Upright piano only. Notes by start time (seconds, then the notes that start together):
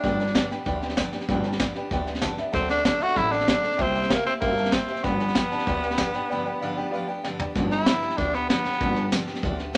0.04 B4 D5 G5
0.20 B4 D5
0.35 B4 D5 G5
0.51 B4 D5 G5
0.66 B4 D5 G5
0.83 B4 D5 G5
0.98 B4 D5 G5
1.14 B4 D5 G5
1.30 B4 D5 G5
1.46 B4 D5 G5
1.61 B4 D5 G5
1.76 B4 D5 G5
1.92 B4 D5 G5
2.07 B4 D5 G5
2.21 B4 D5 A5
2.38 B4 D5 E5
2.52 A4 D5 F#5
2.68 A4 D5 F#5
2.84 A4 F#5
3.00 A4 D5 E5
3.15 A4 D5 F#5
3.31 A4 D5 F#5
3.47 A4 F#5
3.63 A4 D5 A5
3.77 C5 E5 G5
3.94 C5 E5 G5
4.09 C5 E5 G5
4.26 C5 E5 G5
4.40 C5 E5 G5
4.56 C5 E5 A5
4.72 C5 G5
4.88 C5 E5 G5
5.03 B4 D5 G5
5.20 D5 G5
5.36 B4 G5
5.51 B4 D5 A5
5.67 B4 D5 G5
5.83 D5 G5
5.97 B4 D5 G5
6.14 B4 D5 G5
6.29 B4 D5 G5
6.45 B4 D5 G5
6.60 B4 D5 F5
6.76 B4 D5 G5
6.91 B4 D5 F5
7.07 B4 D5 G5
7.24 B4 D5 G5
7.40 B4 D5 G5